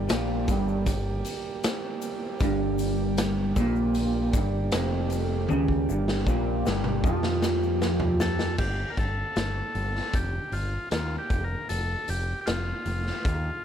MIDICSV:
0, 0, Header, 1, 6, 480
1, 0, Start_track
1, 0, Key_signature, -2, "minor"
1, 0, Tempo, 774194
1, 1494, Time_signature, 4, 2, 24, 8
1, 8460, End_track
2, 0, Start_track
2, 0, Title_t, "Transistor combo organ"
2, 0, Program_c, 0, 18
2, 5088, Note_on_c, 0, 69, 93
2, 5311, Note_off_c, 0, 69, 0
2, 5323, Note_on_c, 0, 67, 88
2, 5517, Note_on_c, 0, 70, 69
2, 5528, Note_off_c, 0, 67, 0
2, 5564, Note_off_c, 0, 70, 0
2, 5574, Note_on_c, 0, 69, 89
2, 6294, Note_on_c, 0, 67, 86
2, 6314, Note_off_c, 0, 69, 0
2, 6529, Note_on_c, 0, 65, 79
2, 6539, Note_off_c, 0, 67, 0
2, 6753, Note_off_c, 0, 65, 0
2, 6774, Note_on_c, 0, 65, 86
2, 6921, Note_off_c, 0, 65, 0
2, 6934, Note_on_c, 0, 67, 84
2, 7094, Note_on_c, 0, 70, 89
2, 7098, Note_off_c, 0, 67, 0
2, 7242, Note_off_c, 0, 70, 0
2, 7248, Note_on_c, 0, 69, 94
2, 7498, Note_off_c, 0, 69, 0
2, 7500, Note_on_c, 0, 67, 86
2, 7688, Note_off_c, 0, 67, 0
2, 7695, Note_on_c, 0, 67, 61
2, 7725, Note_on_c, 0, 65, 87
2, 7736, Note_off_c, 0, 67, 0
2, 8460, Note_off_c, 0, 65, 0
2, 8460, End_track
3, 0, Start_track
3, 0, Title_t, "Transistor combo organ"
3, 0, Program_c, 1, 18
3, 0, Note_on_c, 1, 55, 70
3, 0, Note_on_c, 1, 58, 62
3, 0, Note_on_c, 1, 67, 72
3, 0, Note_on_c, 1, 74, 61
3, 5297, Note_off_c, 1, 67, 0
3, 5297, Note_off_c, 1, 74, 0
3, 5298, Note_off_c, 1, 55, 0
3, 5298, Note_off_c, 1, 58, 0
3, 8460, End_track
4, 0, Start_track
4, 0, Title_t, "Clean electric guitar"
4, 0, Program_c, 2, 27
4, 54, Note_on_c, 2, 46, 102
4, 289, Note_off_c, 2, 46, 0
4, 300, Note_on_c, 2, 43, 98
4, 528, Note_off_c, 2, 43, 0
4, 536, Note_on_c, 2, 43, 77
4, 728, Note_off_c, 2, 43, 0
4, 1497, Note_on_c, 2, 43, 102
4, 2206, Note_off_c, 2, 43, 0
4, 2216, Note_on_c, 2, 46, 104
4, 2685, Note_off_c, 2, 46, 0
4, 2692, Note_on_c, 2, 43, 95
4, 2923, Note_off_c, 2, 43, 0
4, 2929, Note_on_c, 2, 41, 109
4, 3401, Note_off_c, 2, 41, 0
4, 3407, Note_on_c, 2, 49, 99
4, 3640, Note_off_c, 2, 49, 0
4, 3651, Note_on_c, 2, 43, 89
4, 3882, Note_off_c, 2, 43, 0
4, 3888, Note_on_c, 2, 46, 100
4, 4120, Note_off_c, 2, 46, 0
4, 4126, Note_on_c, 2, 43, 106
4, 4359, Note_off_c, 2, 43, 0
4, 4360, Note_on_c, 2, 53, 99
4, 5316, Note_off_c, 2, 53, 0
4, 8460, End_track
5, 0, Start_track
5, 0, Title_t, "Picked electric bass"
5, 0, Program_c, 3, 34
5, 66, Note_on_c, 3, 34, 89
5, 286, Note_off_c, 3, 34, 0
5, 298, Note_on_c, 3, 31, 91
5, 521, Note_off_c, 3, 31, 0
5, 534, Note_on_c, 3, 31, 80
5, 758, Note_off_c, 3, 31, 0
5, 1491, Note_on_c, 3, 31, 95
5, 2185, Note_off_c, 3, 31, 0
5, 2210, Note_on_c, 3, 34, 94
5, 2665, Note_off_c, 3, 34, 0
5, 2687, Note_on_c, 3, 31, 95
5, 2911, Note_off_c, 3, 31, 0
5, 2932, Note_on_c, 3, 29, 96
5, 3385, Note_off_c, 3, 29, 0
5, 3417, Note_on_c, 3, 37, 94
5, 3636, Note_off_c, 3, 37, 0
5, 3654, Note_on_c, 3, 31, 87
5, 3874, Note_off_c, 3, 31, 0
5, 3884, Note_on_c, 3, 34, 89
5, 4108, Note_off_c, 3, 34, 0
5, 4134, Note_on_c, 3, 31, 95
5, 4354, Note_off_c, 3, 31, 0
5, 4365, Note_on_c, 3, 41, 94
5, 5301, Note_off_c, 3, 41, 0
5, 5323, Note_on_c, 3, 31, 87
5, 5474, Note_off_c, 3, 31, 0
5, 5567, Note_on_c, 3, 31, 81
5, 5717, Note_off_c, 3, 31, 0
5, 5806, Note_on_c, 3, 31, 82
5, 5957, Note_off_c, 3, 31, 0
5, 6045, Note_on_c, 3, 31, 85
5, 6196, Note_off_c, 3, 31, 0
5, 6285, Note_on_c, 3, 29, 85
5, 6436, Note_off_c, 3, 29, 0
5, 6522, Note_on_c, 3, 31, 78
5, 6675, Note_off_c, 3, 31, 0
5, 6769, Note_on_c, 3, 39, 81
5, 6920, Note_off_c, 3, 39, 0
5, 7008, Note_on_c, 3, 29, 79
5, 7159, Note_off_c, 3, 29, 0
5, 7255, Note_on_c, 3, 29, 86
5, 7404, Note_off_c, 3, 29, 0
5, 7494, Note_on_c, 3, 29, 84
5, 7644, Note_off_c, 3, 29, 0
5, 7735, Note_on_c, 3, 29, 81
5, 7885, Note_off_c, 3, 29, 0
5, 7971, Note_on_c, 3, 29, 86
5, 8123, Note_off_c, 3, 29, 0
5, 8216, Note_on_c, 3, 39, 90
5, 8367, Note_off_c, 3, 39, 0
5, 8460, End_track
6, 0, Start_track
6, 0, Title_t, "Drums"
6, 55, Note_on_c, 9, 82, 67
6, 57, Note_on_c, 9, 42, 101
6, 62, Note_on_c, 9, 38, 116
6, 117, Note_off_c, 9, 82, 0
6, 119, Note_off_c, 9, 42, 0
6, 124, Note_off_c, 9, 38, 0
6, 296, Note_on_c, 9, 42, 75
6, 298, Note_on_c, 9, 36, 103
6, 300, Note_on_c, 9, 82, 96
6, 358, Note_off_c, 9, 42, 0
6, 360, Note_off_c, 9, 36, 0
6, 362, Note_off_c, 9, 82, 0
6, 422, Note_on_c, 9, 82, 28
6, 484, Note_off_c, 9, 82, 0
6, 534, Note_on_c, 9, 42, 91
6, 536, Note_on_c, 9, 36, 83
6, 536, Note_on_c, 9, 82, 75
6, 596, Note_off_c, 9, 42, 0
6, 598, Note_off_c, 9, 36, 0
6, 598, Note_off_c, 9, 82, 0
6, 772, Note_on_c, 9, 42, 73
6, 780, Note_on_c, 9, 82, 92
6, 834, Note_off_c, 9, 42, 0
6, 842, Note_off_c, 9, 82, 0
6, 1014, Note_on_c, 9, 42, 89
6, 1015, Note_on_c, 9, 82, 74
6, 1019, Note_on_c, 9, 38, 112
6, 1076, Note_off_c, 9, 42, 0
6, 1077, Note_off_c, 9, 82, 0
6, 1081, Note_off_c, 9, 38, 0
6, 1250, Note_on_c, 9, 42, 67
6, 1251, Note_on_c, 9, 82, 101
6, 1312, Note_off_c, 9, 42, 0
6, 1313, Note_off_c, 9, 82, 0
6, 1485, Note_on_c, 9, 82, 73
6, 1490, Note_on_c, 9, 42, 82
6, 1491, Note_on_c, 9, 36, 101
6, 1547, Note_off_c, 9, 82, 0
6, 1552, Note_off_c, 9, 42, 0
6, 1553, Note_off_c, 9, 36, 0
6, 1727, Note_on_c, 9, 82, 95
6, 1729, Note_on_c, 9, 42, 68
6, 1789, Note_off_c, 9, 82, 0
6, 1791, Note_off_c, 9, 42, 0
6, 1969, Note_on_c, 9, 42, 93
6, 1970, Note_on_c, 9, 82, 71
6, 1974, Note_on_c, 9, 38, 113
6, 2031, Note_off_c, 9, 42, 0
6, 2032, Note_off_c, 9, 82, 0
6, 2036, Note_off_c, 9, 38, 0
6, 2207, Note_on_c, 9, 42, 66
6, 2208, Note_on_c, 9, 82, 90
6, 2209, Note_on_c, 9, 36, 103
6, 2269, Note_off_c, 9, 42, 0
6, 2270, Note_off_c, 9, 82, 0
6, 2271, Note_off_c, 9, 36, 0
6, 2329, Note_on_c, 9, 82, 27
6, 2391, Note_off_c, 9, 82, 0
6, 2445, Note_on_c, 9, 82, 65
6, 2447, Note_on_c, 9, 42, 84
6, 2507, Note_off_c, 9, 82, 0
6, 2509, Note_off_c, 9, 42, 0
6, 2687, Note_on_c, 9, 36, 107
6, 2687, Note_on_c, 9, 42, 74
6, 2689, Note_on_c, 9, 82, 87
6, 2749, Note_off_c, 9, 36, 0
6, 2749, Note_off_c, 9, 42, 0
6, 2751, Note_off_c, 9, 82, 0
6, 2924, Note_on_c, 9, 42, 98
6, 2929, Note_on_c, 9, 38, 112
6, 2931, Note_on_c, 9, 82, 68
6, 2986, Note_off_c, 9, 42, 0
6, 2991, Note_off_c, 9, 38, 0
6, 2993, Note_off_c, 9, 82, 0
6, 3160, Note_on_c, 9, 42, 71
6, 3173, Note_on_c, 9, 82, 88
6, 3222, Note_off_c, 9, 42, 0
6, 3235, Note_off_c, 9, 82, 0
6, 3401, Note_on_c, 9, 48, 60
6, 3412, Note_on_c, 9, 82, 57
6, 3463, Note_off_c, 9, 48, 0
6, 3474, Note_off_c, 9, 82, 0
6, 3524, Note_on_c, 9, 36, 55
6, 3586, Note_off_c, 9, 36, 0
6, 3654, Note_on_c, 9, 82, 81
6, 3716, Note_off_c, 9, 82, 0
6, 3770, Note_on_c, 9, 38, 59
6, 3776, Note_on_c, 9, 82, 23
6, 3832, Note_off_c, 9, 38, 0
6, 3838, Note_off_c, 9, 82, 0
6, 3884, Note_on_c, 9, 36, 77
6, 3893, Note_on_c, 9, 82, 67
6, 3946, Note_off_c, 9, 36, 0
6, 3955, Note_off_c, 9, 82, 0
6, 4129, Note_on_c, 9, 82, 86
6, 4133, Note_on_c, 9, 38, 80
6, 4191, Note_off_c, 9, 82, 0
6, 4195, Note_off_c, 9, 38, 0
6, 4241, Note_on_c, 9, 47, 66
6, 4303, Note_off_c, 9, 47, 0
6, 4363, Note_on_c, 9, 36, 97
6, 4372, Note_on_c, 9, 82, 67
6, 4425, Note_off_c, 9, 36, 0
6, 4434, Note_off_c, 9, 82, 0
6, 4483, Note_on_c, 9, 38, 72
6, 4545, Note_off_c, 9, 38, 0
6, 4603, Note_on_c, 9, 38, 95
6, 4608, Note_on_c, 9, 82, 91
6, 4665, Note_off_c, 9, 38, 0
6, 4670, Note_off_c, 9, 82, 0
6, 4730, Note_on_c, 9, 82, 27
6, 4792, Note_off_c, 9, 82, 0
6, 4846, Note_on_c, 9, 38, 88
6, 4848, Note_on_c, 9, 82, 71
6, 4908, Note_off_c, 9, 38, 0
6, 4910, Note_off_c, 9, 82, 0
6, 4958, Note_on_c, 9, 43, 82
6, 5020, Note_off_c, 9, 43, 0
6, 5085, Note_on_c, 9, 38, 96
6, 5086, Note_on_c, 9, 82, 101
6, 5147, Note_off_c, 9, 38, 0
6, 5148, Note_off_c, 9, 82, 0
6, 5203, Note_on_c, 9, 38, 85
6, 5203, Note_on_c, 9, 82, 28
6, 5265, Note_off_c, 9, 38, 0
6, 5265, Note_off_c, 9, 82, 0
6, 5321, Note_on_c, 9, 49, 85
6, 5323, Note_on_c, 9, 36, 94
6, 5383, Note_off_c, 9, 49, 0
6, 5385, Note_off_c, 9, 36, 0
6, 5564, Note_on_c, 9, 36, 74
6, 5564, Note_on_c, 9, 42, 54
6, 5626, Note_off_c, 9, 36, 0
6, 5626, Note_off_c, 9, 42, 0
6, 5803, Note_on_c, 9, 42, 73
6, 5808, Note_on_c, 9, 38, 101
6, 5865, Note_off_c, 9, 42, 0
6, 5870, Note_off_c, 9, 38, 0
6, 6045, Note_on_c, 9, 42, 57
6, 6107, Note_off_c, 9, 42, 0
6, 6172, Note_on_c, 9, 38, 29
6, 6234, Note_off_c, 9, 38, 0
6, 6283, Note_on_c, 9, 42, 75
6, 6285, Note_on_c, 9, 36, 100
6, 6345, Note_off_c, 9, 42, 0
6, 6347, Note_off_c, 9, 36, 0
6, 6524, Note_on_c, 9, 42, 59
6, 6586, Note_off_c, 9, 42, 0
6, 6765, Note_on_c, 9, 42, 79
6, 6770, Note_on_c, 9, 38, 105
6, 6827, Note_off_c, 9, 42, 0
6, 6832, Note_off_c, 9, 38, 0
6, 7007, Note_on_c, 9, 36, 106
6, 7007, Note_on_c, 9, 42, 61
6, 7069, Note_off_c, 9, 36, 0
6, 7069, Note_off_c, 9, 42, 0
6, 7249, Note_on_c, 9, 42, 84
6, 7311, Note_off_c, 9, 42, 0
6, 7488, Note_on_c, 9, 42, 64
6, 7550, Note_off_c, 9, 42, 0
6, 7730, Note_on_c, 9, 42, 83
6, 7735, Note_on_c, 9, 38, 112
6, 7792, Note_off_c, 9, 42, 0
6, 7797, Note_off_c, 9, 38, 0
6, 7971, Note_on_c, 9, 42, 61
6, 8033, Note_off_c, 9, 42, 0
6, 8100, Note_on_c, 9, 38, 31
6, 8162, Note_off_c, 9, 38, 0
6, 8215, Note_on_c, 9, 36, 102
6, 8215, Note_on_c, 9, 42, 74
6, 8277, Note_off_c, 9, 36, 0
6, 8277, Note_off_c, 9, 42, 0
6, 8460, End_track
0, 0, End_of_file